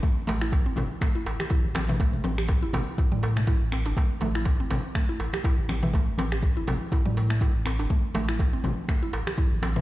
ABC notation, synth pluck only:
X:1
M:4/4
L:1/16
Q:"Swing 16ths" 1/4=122
K:Am
V:1 name="Synth pluck"
A, z A, E z C C z A, E z G E z C E, | A, z C G z E C z E G, z A, E z C D | A, z A, E z C C z A, E z G E z C E, | A, z C G z E C z E G, z A, E z C D |
A, z A, E z C C z A, E z G E z C E, |]